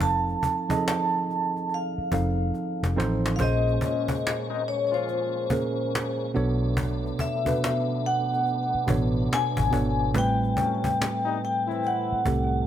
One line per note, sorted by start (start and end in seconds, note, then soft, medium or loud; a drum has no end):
0.00 0.35 F1 loud
0.00 0.45 F3 medium
0.00 0.45 C4 medium
0.00 0.46 D#4 medium
0.00 0.46 A4 medium
0.00 0.46 F5 medium
0.00 0.82 A5 loud
0.00 cajon bass loud
0.30 cajon slap soft
0.43 cajon bass medium
0.43 cajon slap soft
0.69 1.89 F3 medium
0.69 1.89 C4 medium
0.69 1.90 D#4 medium
0.69 0.75 G#4 medium
0.69 1.90 D#5 medium
0.69 cajon bass loud
0.77 1.93 A4 medium
0.88 1.74 A5 loud
0.88 cajon slap loud
1.30 cajon slap soft
1.56 cajon slap soft
1.69 cajon slap soft
1.74 2.95 F5 medium
1.98 muted fingered electric bass stroke medium
2.12 2.50 F1 loud
2.12 2.85 F3 medium
2.12 2.85 C4 medium
2.12 2.85 D#4 medium
2.12 2.86 A4 medium
2.12 2.86 F5 medium
2.12 cajon bass loud
2.54 cajon slap soft
2.83 2.96 F1 medium
2.83 cajon slap medium
2.96 3.36 A1 medium
2.96 3.33 F3 medium
2.96 3.33 C4 medium
2.96 3.33 D#4 medium
2.96 3.34 A4 medium
2.96 3.34 C5 loud
2.96 cajon slap loud
3.26 cajon slap loud
3.36 3.77 A#1 loud
3.36 4.80 A#2 medium
3.36 4.80 A#3 medium
3.36 6.32 A#3 medium
3.36 4.81 C#4 medium
3.36 6.32 C#4 medium
3.36 3.40 F5 medium
3.36 cajon bass loud
3.40 6.32 G#3 medium
3.40 4.81 G#4 medium
3.40 4.81 C5 loud
3.40 4.71 D#5 loud
3.68 cajon slap soft
3.81 4.15 F3 medium
3.81 4.15 G#3 medium
3.81 4.15 C#4 medium
3.81 cajon bass medium
3.81 cajon slap soft
4.08 cajon bass loud
4.27 cajon slap loud
4.49 4.62 G#3 medium
4.49 4.62 C4 medium
4.49 4.62 D#4 medium
4.68 4.83 C#5 loud
4.68 cajon slap soft
4.87 4.94 C#5 medium
4.92 5.47 F3 medium
4.92 5.47 C#4 medium
4.92 5.47 F4 medium
4.92 6.32 C5 medium
4.92 cajon slap soft
5.08 cajon slap soft
5.50 6.34 A#2 medium
5.50 6.35 A#3 medium
5.50 6.35 C#4 medium
5.50 6.35 G#4 medium
5.50 6.36 A#4 medium
5.50 cajon bass medium
5.95 cajon slap loud
6.34 7.11 B1 loud
6.34 7.22 B2 loud
6.34 10.12 A3 medium
6.34 7.22 B3 medium
6.34 10.12 B3 medium
6.34 7.22 D4 medium
6.34 10.12 D4 medium
6.34 7.22 A4 medium
6.34 7.23 C#5 loud
6.34 cajon slap soft
6.77 cajon bass loud
7.06 cajon slap soft
7.19 8.00 E5 medium
7.19 cajon bass medium
7.19 cajon slap soft
7.45 8.65 B2 medium
7.45 8.65 B3 medium
7.45 8.66 D4 medium
7.45 8.66 A4 medium
7.45 8.66 B4 medium
7.45 cajon bass medium
7.64 cajon slap loud
8.06 8.86 F#5 loud
8.06 cajon slap soft
8.33 cajon slap soft
8.46 cajon slap soft
8.75 muted fingered electric bass stroke soft
8.87 9.26 A1 medium
8.87 9.61 B2 medium
8.87 9.61 B3 medium
8.87 9.61 D4 medium
8.87 9.62 A4 medium
8.87 9.62 C#5 medium
8.87 cajon bass loud
9.33 10.13 G#5 loud
9.33 cajon slap loud
9.57 9.72 G#1 medium
9.57 cajon bass medium
9.71 10.16 G#1 medium
9.71 10.09 B2 medium
9.71 10.09 B3 medium
9.71 10.09 D4 medium
9.71 10.09 A4 medium
9.71 10.10 C#5 medium
9.71 cajon bass loud
10.14 10.53 A1 loud
10.14 11.56 A2 medium
10.14 11.57 G3 medium
10.14 12.67 A3 medium
10.14 11.56 A3 medium
10.14 11.56 C4 medium
10.14 11.57 B4 loud
10.14 cajon bass loud
10.18 11.43 G5 loud
10.44 cajon slap soft
10.57 10.91 F#3 medium
10.57 10.91 A3 medium
10.57 10.91 C#4 medium
10.57 cajon bass medium
10.57 cajon slap soft
10.84 cajon bass medium
11.02 cajon slap loud
11.25 11.38 G3 medium
11.25 11.38 B3 medium
11.25 11.38 D#4 medium
11.44 11.87 G5 medium
11.44 cajon slap soft
11.67 12.22 E3 medium
11.67 12.22 C4 medium
11.67 12.22 E4 medium
11.67 cajon slap soft
11.83 12.66 F#5 medium
11.83 cajon slap soft
12.12 muted fingered electric bass stroke medium
12.25 12.67 C2 medium
12.25 12.67 A2 medium
12.25 12.67 A3 medium
12.25 12.67 C4 medium
12.25 12.67 G4 medium
12.25 12.67 A4 medium
12.25 cajon bass medium